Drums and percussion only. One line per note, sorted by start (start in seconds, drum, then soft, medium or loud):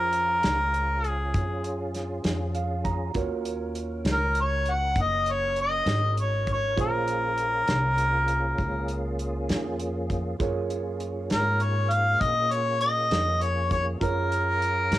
0.13 closed hi-hat soft
0.43 snare medium
0.43 closed hi-hat medium
0.74 closed hi-hat soft
1.04 closed hi-hat soft
1.34 kick medium
1.34 closed hi-hat medium
1.64 closed hi-hat soft
1.94 snare soft
1.94 closed hi-hat soft
2.24 snare medium
2.24 closed hi-hat medium
2.54 closed hi-hat medium
2.85 kick medium
2.85 closed hi-hat medium
3.14 kick medium
3.14 closed hi-hat medium
3.45 closed hi-hat medium
3.75 closed hi-hat medium
4.05 snare medium
4.05 closed hi-hat medium
4.35 closed hi-hat soft
4.66 closed hi-hat soft
4.96 kick medium
4.96 closed hi-hat medium
5.26 closed hi-hat soft
5.56 closed hi-hat soft
5.86 snare medium
5.86 closed hi-hat medium
6.17 closed hi-hat soft
6.47 kick medium
6.47 closed hi-hat soft
6.77 kick medium
6.77 closed hi-hat medium
7.08 closed hi-hat medium
7.38 closed hi-hat soft
7.68 snare medium
7.68 closed hi-hat medium
7.98 closed hi-hat medium
8.28 closed hi-hat medium
8.58 kick medium
8.58 closed hi-hat medium
8.88 closed hi-hat soft
9.19 closed hi-hat soft
9.49 snare medium
9.49 closed hi-hat medium
9.80 closed hi-hat soft
10.10 kick medium
10.10 closed hi-hat soft
10.40 kick medium
10.40 closed hi-hat medium
10.70 closed hi-hat soft
11.00 closed hi-hat soft
11.30 snare medium
11.30 closed hi-hat medium
11.60 closed hi-hat soft
11.91 closed hi-hat soft
12.21 kick medium
12.21 closed hi-hat medium
12.52 closed hi-hat medium
12.81 closed hi-hat medium
13.11 snare medium
13.11 closed hi-hat medium
13.42 closed hi-hat medium
13.71 kick medium
13.71 closed hi-hat medium
14.01 kick medium
14.01 closed hi-hat medium
14.32 closed hi-hat medium
14.62 closed hi-hat medium
14.92 snare medium
14.92 closed hi-hat medium